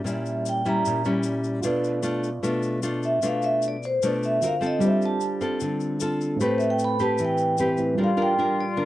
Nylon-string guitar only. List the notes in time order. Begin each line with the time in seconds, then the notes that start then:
0.04 A#2 G3 C#4 E4
0.65 G3 C#4 E4
0.86 A#2
1.05 G3 C#4 E4
1.64 B2 A3 D4 F4
2.03 A3 D4 F4
2.43 B2 A3 D4 F4
2.83 A3 D4 F4
3.22 B2 A3 D4 F4
4.03 B2 A3 D4 F4
4.43 C4 F#4 A#4
4.61 C4 F4 A4
4.80 G3
5.41 C4 F4 A4
5.62 D3
6.01 C4 F4 A4
6.40 A3 C4 G4 B4
7.00 C4 G4 B4
7.20 E3
7.59 C4 G4 B4
7.98 G3 D4 F4 A#4
8.17 D4 F4 A#4
8.38 D4 F4 A#4
8.77 D3 D4 F4 A#4